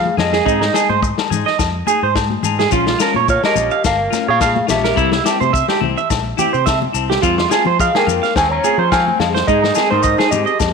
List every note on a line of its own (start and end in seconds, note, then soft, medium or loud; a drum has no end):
0.00 0.15 G#4 medium
0.00 0.19 F5 loud
0.06 high conga medium
0.17 0.40 F2 medium
0.17 0.37 C4 soft
0.17 0.37 F4 soft
0.17 0.36 G#4 soft
0.17 0.98 G#4 medium
0.17 0.99 D#5 medium
0.17 snare medium
0.17 low conga medium
0.17 low agogo medium
0.33 0.44 G#4 medium
0.33 snare medium
0.33 maracas soft
0.45 0.68 G#2 medium
0.45 0.64 C4 medium
0.45 0.58 D#4 medium
0.45 0.64 D#4 medium
0.45 0.65 G#4 medium
0.45 kick medium
0.45 maracas medium
0.61 0.72 D#4 medium
0.61 snare medium
0.73 0.93 D#4 soft
0.73 0.92 G#4 soft
0.73 0.87 G#4 medium
0.73 snare medium
0.73 low agogo medium
0.73 maracas medium
0.89 1.12 G#2 medium
0.89 1.00 C5 medium
0.89 high conga medium
1.03 muted clean electric guitar stroke medium
1.03 kick medium
1.03 maracas medium
1.18 snare medium
1.18 low agogo medium
1.30 1.43 G#2 medium
1.30 1.50 D#4 soft
1.30 1.48 G#4 medium
1.30 low conga medium
1.30 maracas medium
1.46 1.57 D#5 medium
1.46 snare soft
1.59 1.81 F2 medium
1.59 kick medium
1.59 snare medium
1.59 low agogo medium
1.59 maracas medium
1.87 2.06 D#4 soft
1.87 2.05 G#4 medium
1.87 1.99 G#4 medium
1.87 high conga medium
1.87 maracas medium
2.03 2.35 G#2 medium
2.03 2.13 C5 medium
2.15 kick medium
2.15 snare medium
2.15 low agogo medium
2.15 maracas medium
2.30 high conga medium
2.43 2.65 G#2 medium
2.43 2.62 D#4 soft
2.43 2.61 G#4 medium
2.43 low conga medium
2.43 low agogo medium
2.43 maracas medium
2.59 2.69 G#4 medium
2.59 snare medium
2.59 maracas soft
2.70 2.94 A#1 loud
2.70 2.89 F3 medium
2.70 2.90 C#4 medium
2.70 2.90 F4 medium
2.70 2.84 F4 medium
2.70 kick medium
2.70 maracas medium
2.86 2.98 F4 medium
2.86 snare medium
2.99 3.19 C#4 soft
2.99 3.17 F4 medium
2.99 3.13 A#4 medium
2.99 snare medium
2.99 low agogo medium
2.99 maracas medium
3.14 3.37 A#2 medium
3.14 3.26 C#5 medium
3.14 high conga medium
3.28 3.43 F4 medium
3.28 3.43 C#5 medium
3.28 3.41 F5 medium
3.28 kick medium
3.28 maracas medium
3.43 3.83 G4 medium
3.43 3.54 A#4 medium
3.43 3.82 D#5 loud
3.43 snare medium
3.43 low agogo medium
3.55 3.68 A#1 medium
3.55 3.74 C#4 soft
3.55 3.73 F4 soft
3.55 low conga medium
3.55 maracas medium
3.71 3.82 F5 medium
3.71 maracas soft
3.84 4.07 G1 medium
3.84 4.25 A#4 medium
3.84 4.29 F5 loud
3.84 kick medium
3.84 snare medium
3.84 low agogo medium
3.84 maracas medium
4.10 4.31 C#4 soft
4.10 4.29 F4 medium
4.10 muted clean electric guitar stroke medium
4.10 snare soft
4.10 high conga medium
4.10 maracas medium
4.28 4.60 A#2 medium
4.28 4.66 G#4 medium
4.28 4.38 C#5 medium
4.28 4.70 F5 loud
4.40 4.53 F5 medium
4.40 kick medium
4.40 snare medium
4.40 low agogo medium
4.40 maracas medium
4.56 high conga medium
4.67 4.92 A#1 medium
4.67 4.87 C#4 soft
4.67 4.86 F4 medium
4.67 5.50 G4 medium
4.67 5.50 E5 medium
4.67 snare medium
4.67 low conga medium
4.67 low agogo medium
4.67 maracas medium
4.84 4.95 A#4 medium
4.84 snare medium
4.84 maracas soft
4.95 5.19 C2 loud
4.95 5.14 G3 medium
4.95 5.14 C4 medium
4.95 5.15 E4 medium
4.95 5.10 E4 medium
4.95 kick medium
4.95 maracas medium
5.12 5.23 E4 medium
5.12 snare medium
5.24 5.44 C4 soft
5.24 5.42 E4 medium
5.24 5.38 G4 medium
5.24 snare medium
5.24 low agogo medium
5.24 maracas medium
5.41 5.63 C3 medium
5.41 5.51 C5 medium
5.41 high conga medium
5.41 maracas soft
5.53 5.65 E5 medium
5.53 kick medium
5.53 maracas medium
5.68 5.79 G4 medium
5.68 snare medium
5.68 low agogo medium
5.80 5.94 C2 medium
5.80 6.00 C4 soft
5.80 5.99 E4 medium
5.80 high conga medium
5.80 low conga medium
5.98 6.08 E5 medium
5.98 maracas soft
6.10 6.32 A#1 medium
6.10 kick medium
6.10 snare medium
6.10 low agogo medium
6.10 maracas medium
6.37 6.57 C4 soft
6.37 6.55 E4 medium
6.37 6.51 G4 medium
6.37 high conga medium
6.37 low conga medium
6.37 maracas medium
6.53 6.86 C3 medium
6.53 6.63 C5 medium
6.53 maracas soft
6.66 6.78 E5 medium
6.66 kick medium
6.66 snare medium
6.66 low agogo medium
6.66 maracas medium
6.82 high conga medium
6.93 7.16 C2 medium
6.93 7.13 C4 soft
6.93 7.12 E4 soft
6.93 low agogo medium
6.93 maracas medium
7.10 7.20 G4 medium
7.10 snare medium
7.22 7.45 F2 medium
7.22 7.40 G#3 medium
7.22 7.41 C4 medium
7.22 7.35 F4 medium
7.22 7.41 F4 loud
7.22 kick medium
7.22 maracas medium
7.38 7.48 F4 medium
7.38 snare medium
7.50 7.69 C4 soft
7.50 7.68 F4 medium
7.50 7.63 G#4 medium
7.50 snare medium
7.50 low agogo medium
7.50 maracas medium
7.65 7.88 F3 medium
7.65 7.77 C5 medium
7.65 high conga medium
7.80 7.99 G#3 medium
7.80 7.94 G#4 medium
7.80 7.92 F5 medium
7.80 7.97 F5 medium
7.80 kick medium
7.80 maracas medium
7.95 8.37 A#3 medium
7.95 8.05 G#4 medium
7.95 8.33 A#4 medium
7.95 8.36 G5 loud
7.95 snare medium
7.95 low agogo medium
8.06 8.19 F2 medium
8.06 8.26 C4 soft
8.06 8.25 F4 medium
8.06 low conga medium
8.06 maracas medium
8.23 8.33 F5 medium
8.23 snare soft
8.23 maracas soft
8.36 8.58 D#2 medium
8.36 8.51 C4 medium
8.36 8.50 C5 medium
8.36 8.51 G#5 loud
8.36 kick medium
8.36 snare medium
8.36 low agogo medium
8.36 maracas medium
8.51 8.90 C#4 medium
8.51 8.89 C#5 medium
8.51 8.89 A#5 medium
8.64 8.83 C4 soft
8.64 8.82 F4 medium
8.64 8.76 G#4 medium
8.64 high conga medium
8.64 maracas medium
8.78 9.10 F3 medium
8.78 8.89 C5 medium
8.92 9.18 C4 medium
8.92 9.18 C5 medium
8.92 9.04 F5 medium
8.92 9.18 G#5 medium
8.92 kick medium
8.92 snare medium
8.92 low agogo medium
8.92 maracas medium
9.08 high conga medium
9.19 9.42 F2 medium
9.19 9.33 G#3 medium
9.19 9.39 C4 soft
9.19 9.27 G#4 medium
9.19 9.27 F5 medium
9.19 muted clean electric guitar stroke soft
9.19 snare medium
9.19 low conga medium
9.19 low agogo medium
9.35 9.45 C5 medium
9.35 snare medium
9.35 maracas soft
9.47 9.70 G#2 medium
9.47 9.66 G#3 medium
9.47 9.89 G#3 medium
9.47 9.60 D#4 medium
9.47 9.66 D#4 medium
9.47 9.89 G#4 medium
9.47 9.90 D#5 medium
9.47 muted clean electric guitar stroke medium
9.47 kick medium
9.47 maracas medium
9.63 9.73 D#4 medium
9.63 snare medium
9.75 9.95 C4 soft
9.75 9.94 D#4 soft
9.75 9.88 G#4 medium
9.75 snare medium
9.75 low agogo medium
9.75 maracas medium
9.90 10.14 G#2 medium
9.90 10.30 D#3 medium
9.90 10.30 D#4 medium
9.90 10.30 C5 medium
9.90 10.01 C5 medium
9.90 high conga medium
10.03 10.16 D#5 medium
10.03 kick medium
10.03 maracas medium
10.18 10.30 G#4 medium
10.18 snare medium
10.18 low agogo medium
10.31 10.44 G#2 medium
10.31 10.73 G#3 medium
10.31 10.51 C4 soft
10.31 10.50 D#4 medium
10.31 10.73 G4 medium
10.31 10.73 D#5 medium
10.31 low conga medium
10.31 maracas medium
10.46 10.57 D#5 medium
10.46 maracas soft
10.60 10.73 F2 medium
10.60 kick medium
10.60 snare medium
10.60 low agogo medium
10.60 maracas medium